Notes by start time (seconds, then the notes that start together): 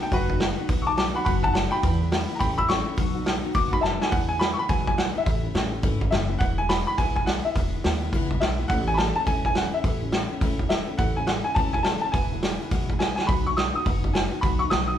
0.01 B3 D#4 F#4 G5
0.12 F#1 B2 F#3 B3 D#4 F#4 B4, kick, open hi-hat
0.30 B3 D#4 F#4, kick
0.40 F#3 B3 D#4 F#4, snare, open hi-hat
0.58 B3 D#4 F#4
0.68 B1 B2 F#3 B3 D#4 F#4, kick, open hi-hat
0.82 C#6
0.86 B3 D#4 F#4 A5 D6
0.97 F#3 B3 D#4 F#4 A5 D6, snare, open hi-hat
1.15 B3 D#4 F#4 F#5 B5
1.25 F#1 B2 F#3 B3 D#4 F#4 F#5 B5, kick, open hi-hat
1.43 B3 D#4 F#4 F#5 A5, kick
1.53 F#3 B3 D#4 F#4 F#5 A5, snare, open hi-hat
1.71 D#4 F#4 G5 B5
1.75 B3
1.82 E2 B2 E3 G#3 B3 E4, kick, open hi-hat
2.01 E3 G#3 B3 E4
2.11 E3 G#3 B3 E4, snare, open hi-hat
2.30 E3 G#3 B3 E4
2.35 G5 A#5
2.40 A1 A2 E3 A3 C#4 E4 B5, kick, open hi-hat
2.58 A3 C#4 E4 B5 E6, kick
2.68 E3 A3 C#4 E4 C#6, snare, open hi-hat
2.86 A3 C#4 E4
2.96 B1 B2 F#3 B3 D#4 F#4, kick, open hi-hat
3.15 B3 D#4 F#4
3.25 F#3 B3 D#4 F#4, snare, open hi-hat
3.43 B3 D#4 F#4
3.53 F#1 B2 F#3 B3 D#4 F#4 D6, kick, open hi-hat
3.71 B3 D#4 F#4 B5, kick
3.81 F#3 B3 D#4 E5 A5, snare
3.85 F#4
4.00 B3 D#4 F#4 G#5, snare
4.11 E2 B2 E3 G#3 B3 E4 F#5, kick, open hi-hat
4.29 E3 G#3 B3 E4 G#5
4.39 E3 G#3 B3 B5, snare, open hi-hat
4.53 C#6
4.58 E3 G#3 B3 E4 B5
4.68 B1 E2 B2 E3 G#3 B3 E4 G#5, kick, open hi-hat
4.87 E3 G#3 B3 E4 G#5, kick
4.97 E3 G#3 B3 E4 F#5, snare, open hi-hat
5.15 E3 G#3 B3 E4 E5
5.26 A1 A2 E3 A3 C#4 E4, kick, open hi-hat
5.43 A3 C#4 E4
5.54 A1 E3 A3 C#4 E4, snare, open hi-hat
5.72 A3 C#4 E4
5.83 G#1 A2 E3 A3 C#4 E4, kick, open hi-hat
6.00 A3 C#4 E4, kick
6.11 F#1 E3 A3 C#4 E4 E5, snare, open hi-hat
6.29 A3 C#4 E4
6.39 E1 E2 B2 E3 G#3 B3 E4 F#5, kick, open hi-hat
6.58 E3 G#3 B3 E4 G#5
6.69 E3 G#3 B3 E4 B5, snare, open hi-hat
6.87 E3 G#3 B3 E4 B5
6.98 B1 E2 B2 E3 G#3 B3 E4 G#5, kick, open hi-hat
7.16 E3 G#3 B3 E4 G#5, kick
7.26 E3 G#3 B3 E4 F#5, snare, open hi-hat
7.45 E3 G#3 B3 E4 E5
7.55 E1 E2 B2 E3 G#3 B3 E4, kick, open hi-hat
7.74 E3 G#3 B3 E4
7.84 D#2 E3 G#3 B3 E4, snare, open hi-hat
8.02 E3 G#3 B3 E4
8.13 C#2 E2 B2 E3 G#3 B3 E4, kick, open hi-hat
8.31 E3 G#3 B3 E4, kick
8.40 B1 E3 B3 E5, snare, open hi-hat
8.45 E4
8.59 E3 G#3 B3 E4
8.68 A1 A2 E3 A3 C#4 F#5, kick, open hi-hat
8.72 E4
8.88 A3 C#4 E4 G#5
8.94 E3 A5 B5, snare, open hi-hat
8.99 A3 C#4 E4
9.15 A3 C#4 E4 A5
9.25 E1 A2 E3 A3 C#4 E4 G#5, kick, open hi-hat
9.44 E4 G#5, kick
9.54 E3 A3 C#4 E4 F#5, snare, open hi-hat
9.72 A3 C#4 E4 E5
9.84 A1 A2 E3 A3 C#4 E4, kick, open hi-hat
10.02 A3 C#4 E4
10.12 E3 A3 C#4 E4, snare, open hi-hat
10.30 A3 C#4 E4
10.41 E1 A2 E3 A3 C#4 E4, kick, open hi-hat
10.59 A3 C#4 E4, kick
10.69 E3 A3 C#4 E4 E5, snare, open hi-hat
10.87 A3 C#4 E4
10.98 A1 A2 E3 A3 C#4 E4 F#5, kick, open hi-hat
11.17 A3 C#4 E4 G#5
11.27 E3 A3 C#4 E4 F#5, snare, open hi-hat
11.44 A3 C#4 E4 G#5
11.55 E1 A2 E3 A3 C#4 E4 A5, kick, open hi-hat
11.73 A3 C#4 E4 G#5, kick
11.83 E3 A3 C#4 A5, snare, open hi-hat
11.88 E4
12.01 C#4 E4 A5
12.06 A3
12.12 E1 E2 B2 E3 G#3 B3 E4 G#5, kick, open hi-hat
12.32 E3 G#3 B3 E4
12.42 E3 G#3 B3 E4, snare, open hi-hat
12.61 E3 G#3 B3 E4
12.71 B1 E2 B2 E3 G#3 B3 E4, kick, open hi-hat
12.89 E3 G#3 B3 E4, kick
12.99 E3 G#3 B3 E4 G#5, snare, open hi-hat
13.16 B3 E4 G#5, snare
13.20 E3 G#3
13.27 B1 B2 F#3 B3 D#4 B5, kick, open hi-hat
13.31 F#4
13.46 B3 D#4 F#4 C#6
13.56 F#3 B3 D#4 F#4 D#6, snare, open hi-hat
13.74 B3 D#4 F#4 D#6
13.85 F#1 B2 F#3 B3 D#4 F#4, kick, open hi-hat
14.04 B3 D#4 F#4, kick
14.14 F#3 B3 D#4 F#4 G#5, snare, open hi-hat
14.32 B3 D#4 F#4
14.41 B1 B2 F#3 B3 D#4 F#4 B5, kick, open hi-hat
14.59 B3 D#4 F#4 C#6
14.70 B1 F#3 B3 D#4 F#4 D#6, snare, open hi-hat
14.88 B3 D#4 F#4 D#6